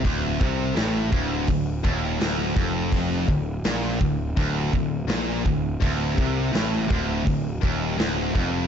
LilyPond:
<<
  \new Staff \with { instrumentName = "Distorted electric guitar" } { \clef bass \time 4/4 \key d \minor \tempo 4 = 83 d,8 c8 a,8 d,8 d,8 ees,8 d,8 f,8~ | f,8 d,8 bes,8 d,8 d,8 d,8 bes,8 d,8 | d,8 c8 a,8 d,8 d,8 ees,8 d,8 f,8 | }
  \new Staff \with { instrumentName = "Distorted electric guitar" } { \clef bass \time 4/4 \key d \minor d,8 c8 a,8 d,8 d,8 ees,8 d,8 f,8~ | f,8 d,8 bes,8 d,8 d,8 d,8 bes,8 d,8 | d,8 c8 a,8 d,8 d,8 ees,8 d,8 f,8 | }
  \new Staff \with { instrumentName = "Picked electric bass" } { \clef bass \time 4/4 \key d \minor d,,8 c,8 a,,8 d,,8 d,,8 ees,,8 d,,8 f,,8~ | f,,8 d,,8 bes,,8 d,,8 d,,8 d,,8 bes,,8 d,,8 | d,,8 c,8 a,,8 d,,8 d,,8 ees,,8 d,,8 f,,8 | }
  \new DrumStaff \with { instrumentName = "Drums" } \drummode { \time 4/4 <hho bd>8 bd8 <hho sn>8 bd8 <hho bd>8 bd8 <hho sn>8 bd8 | <hho bd>8 bd8 <hho sn>8 bd8 <hho bd>8 bd8 <hho sn>8 bd8 | <hho bd>8 bd8 <hho sn>8 bd8 <hho bd>8 bd8 <hho sn>8 bd8 | }
>>